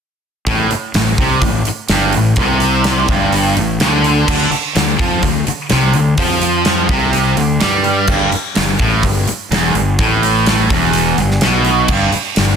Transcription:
0.47 A1 A2, kick, open hi-hat
0.71 muted fingered electric bass stroke, muted overdriven electric guitar stroke, muted distorted electric guitar stroke, open hi-hat
0.94 A1 A2, snare, open hi-hat
1.18 C2 C3, kick, open hi-hat
1.41 A1 A2, kick, open hi-hat
1.65 muted fingered electric bass stroke, muted overdriven electric guitar stroke, muted distorted electric guitar stroke, open hi-hat
1.89 G1 G2, snare, open hi-hat
2.13 A1 A2, open hi-hat
2.36 C2 C3, kick, open hi-hat
2.60 open hi-hat
2.84 snare, open hi-hat
3.08 G1 G2, kick, open hi-hat
3.33 open hi-hat
3.57 A1 A2, open hi-hat
3.80 D2 D3, snare, open hi-hat
4.04 open hi-hat
4.28 D2 D3, kick, crash
4.51 muted distorted electric guitar stroke, muted fingered electric bass stroke, muted overdriven electric guitar stroke, open hi-hat
4.76 D2 D3, snare, open hi-hat
4.98 F2 F3, kick, open hi-hat
5.23 D2 D3, kick, open hi-hat
5.47 muted distorted electric guitar stroke, muted fingered electric bass stroke, muted overdriven electric guitar stroke, open hi-hat
5.70 C2 C3, snare, open hi-hat
5.93 D2 D3, open hi-hat
6.18 F2 F3, kick, open hi-hat
6.42 open hi-hat
6.65 snare, open hi-hat
6.89 C2 C3, kick, open hi-hat
7.13 open hi-hat
7.37 D2 D3, open hi-hat
7.60 G2 G3, snare, open hi-hat
7.84 open hi-hat
8.07 G1 G2, kick, crash
8.32 muted overdriven electric guitar stroke, muted distorted electric guitar stroke, muted fingered electric bass stroke, open hi-hat
8.55 G1 G2, snare, open hi-hat
8.79 A1 A2, kick, open hi-hat
9.03 G1 G2, kick, open hi-hat
9.27 muted overdriven electric guitar stroke, muted distorted electric guitar stroke, muted fingered electric bass stroke, open hi-hat
9.51 E1 E2, snare, open hi-hat
9.74 G1 G2, open hi-hat
9.99 A1 A2, kick, open hi-hat
10.23 open hi-hat
10.46 snare, open hi-hat
10.70 E1 E2, kick, open hi-hat
10.93 open hi-hat
11.18 G1 G2, open hi-hat
11.31 snare
11.41 B1 B2, snare, open hi-hat
11.64 open hi-hat
11.88 G1 G2, kick, crash
12.12 muted overdriven electric guitar stroke, muted fingered electric bass stroke, muted distorted electric guitar stroke, open hi-hat
12.36 G1 G2, snare, open hi-hat

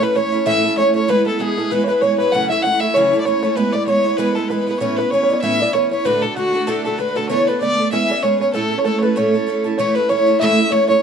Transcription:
0.01 A3 C#4 E4 B4
0.15 E3 A3 C#4 E4 C#5
0.32 A3 C#4 E4
0.46 A2 E3 A3 C#4 E4 E5
0.63 A3 C#4 E4
0.76 E3 A3 C#4 E4 C#5
0.94 A3 C#4 E4 C#5
1.08 E3 G#3 B3 E4 B4
1.25 G#3 B3 E4 A4
1.39 E3 G#3 B3 E4 G#4
1.57 G#3 B3 E4 A4
1.71 E3 G#3 B3 E4 B4
1.84 C#5
1.88 G#3 B3 E4 B4
2.01 E3 G#3 B3 E4 C#5
2.18 B3 E4 B4
2.23 G#3
2.32 F#2 C#3 E3 A3 C#4 E4 F#5
2.49 E3 A3 C#4 E4 E5
2.62 E3 A3 C#4 F#5
2.67 E4
2.80 E3 A3 C#4 E4 E5
2.94 F#2 C#3 E3 A3 C#4 E4 C#5
3.13 E3 A3 C#4 E4
3.20 D5
3.25 E3 A3 C#4 E4 C#5
3.42 E3 A3 C#4 E4 C#5
3.56 E3 G#3 B3 E4 B4
3.73 G#3 B3 E4 D5
3.87 E3 G#3 B3 E4 C#5
4.04 G#3 B3 E4
4.17 E3 G#3 B3 E4 B4
4.33 E4 A4 B4
4.38 G#3 B3
4.48 E3 G#3 B3 B4
4.52 E4
4.60 B4
4.67 G#3 B3 E4 B4
4.79 A2 E3 B3 C#4 E4 C#5
4.97 C#4 E4 B4
5.01 B3
5.10 E3 B3 C#4 C#5
5.15 E4
5.23 C#5
5.29 B3 C#4 E4 D5
5.33 C#5
5.42 A2 E3 B3 C#4 E4 E5
5.60 B3 C#4 E4 D5
5.73 E3 B3 C#4 E4 C#5
5.91 B3 C#4 E4 C#5
6.05 D2 A2 D3 A3 D4 F#4 B4
6.22 D3 A3 D4 F#4 A4
6.36 D3 A3 D4 F#4
6.53 D3 A3 D4 F#4
6.67 D2 A2 D3 A3 D4 F#4 A4
6.84 D3 A3 D4 F#4 A4
6.98 D3 A3 D4 F#4 B4
7.15 D3 A3 D4 F#4 A4
7.29 D3 E3 A3 B3 D4 C#5
7.47 A3 B3 D4 B4
7.61 D3 A3 B3 D4 D5
7.78 A3 B3 D4
7.91 E3 G#3 B3 C#4 G#4 E5
8.03 E5
8.10 B3 C#4 G#4 D5 E5
8.22 G#3 B3 C#4 G#4 C#5
8.40 B3 C#4 G#4 C#5
8.54 A2 A3 C#4 E4 A4
8.71 C#4 E4 A4
8.78 C#5
8.85 A3 C#4 E4 A4
8.99 A4 B4 C#5
9.03 C#4 E4 B4
9.16 A2 A3 C#4 E4 A4 C#5
9.34 C#4 E4 A4
9.47 A3 C#4 E4 A4
9.64 C#4 E4 A4
9.78 A2 E3 A3 C#4 E4 C#5
9.95 A3 C#4 E4 B4
10.09 E3 A3 C#4 E4 C#5
10.27 A3 C#4 E4
10.40 A2 E3 A3 C#4 E4 E5
10.59 A3 C#4 E4
10.70 E3 A3 C#4 E4 C#5
10.88 A3 C#4 E4 C#5

